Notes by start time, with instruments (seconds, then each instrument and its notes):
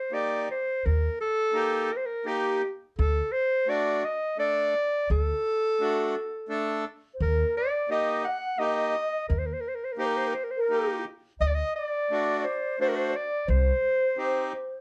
Already playing: clarinet C5
0.11 accordion A#3 D#4 G4, clarinet D5
0.51 clarinet C5
0.85 upright bass D#2, clarinet A#4
1.21 clarinet A4
1.53 accordion A#3 D#4 G4
1.93 clarinet A#4 C5
2.06 clarinet A#4
2.25 accordion A#3 D#4 G4, clarinet G4
2.99 upright bass D2, clarinet A4
3.32 clarinet C5
3.67 accordion A3 D4 F#4, clarinet D5
4.04 clarinet D#5
4.38 accordion A3 D4 A4, clarinet D5
5.10 upright bass D2, clarinet A4
5.80 accordion A3 D4 F#4
6.49 accordion A3 D4 A4
7.14 alto flute C5
7.20 upright bass D#2, clarinet A#4, alto flute A#4
7.57 alto flute D5, clarinet D5
7.89 accordion A#3 D#4 G4, clarinet D#5, alto flute D#5
8.25 clarinet F#5, alto flute F#5
8.58 accordion A#3 D#4 G4, clarinet D#5, alto flute D#5
9.29 upright bass D#2, clarinet A#4
9.38 clarinet C5
9.46 clarinet A#4
9.53 clarinet C5
9.61 clarinet A#4
9.68 clarinet C5
9.75 clarinet A#4
9.84 clarinet C5
9.92 clarinet A#4
9.97 accordion A#3 D#4 G4, clarinet C5
10.06 clarinet A#4
10.17 clarinet C5
10.28 clarinet A#4
10.34 clarinet C5
10.44 clarinet A#4
10.51 clarinet C5
10.57 alto flute A#4
10.61 clarinet A#4
10.70 accordion A#3 D#4 G4
11.39 upright bass D2, alto flute D#5, clarinet D#5
11.47 clarinet D5, alto flute D5
11.52 alto flute D#5, clarinet D#5
11.75 alto flute D5, clarinet D5
12.10 accordion A3 D4 F#4
12.44 clarinet C5
12.79 accordion A3 D4 F#4, alto flute C5, clarinet C5
12.89 clarinet A#4
12.96 clarinet C5
13.12 alto flute D5
13.17 clarinet D5
13.47 upright bass C2, alto flute C5, clarinet C5
14.17 accordion C4 D#4 G4